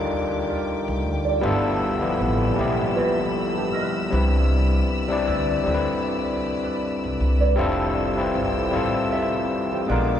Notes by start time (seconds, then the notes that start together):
Already playing: G3 D4 D#4 F4 G4 A4 A#4 G5 D6
0.48 F4 G4 D5
0.88 C2
1.05 D2
1.25 F4 G4 D5
1.41 G1 B2 G3 A3 B3 D4 E4 F4 A4 B5 E6
1.46 A4
2.01 F3 G3 B3 E4
2.06 G4
2.18 A1 F2 E3 B3
2.56 B1 F3 G3 A#3 E4 F4 B4 E5
2.60 B3 G4
2.95 F4 B4 E5
3.17 B2 A3 E4
3.55 E3 D4 G4
3.73 F4 B4 E5
4.10 C2 G3 C4 D4 E4 D5
4.14 B4
5.08 G3 C4 D4 E4
5.12 D5
5.27 D2 E4 B4 D5
5.63 D2 G3 C4 D4 E4
5.68 A4
5.74 B4
6.63 E4 B4 D5
7.04 C2
7.21 C2
7.40 E4 B4 D5
7.55 F1 A2 G3 C4 D4 E4 F4 A4 G5 E6
7.60 A4
8.16 G3 C4 E4 F4
8.20 B4
8.33 G1 A2 G3 C4
8.71 A1 G3 C4 E4 F4 G4 A4 E5
8.76 A4
9.11 G4 A4 E5
9.32 C3 A3 E4
9.71 E3 C4 G4
9.87 A#1 G#3 B3 D4 F4 G#4 B4 D5 G#5 D6
9.91 A#4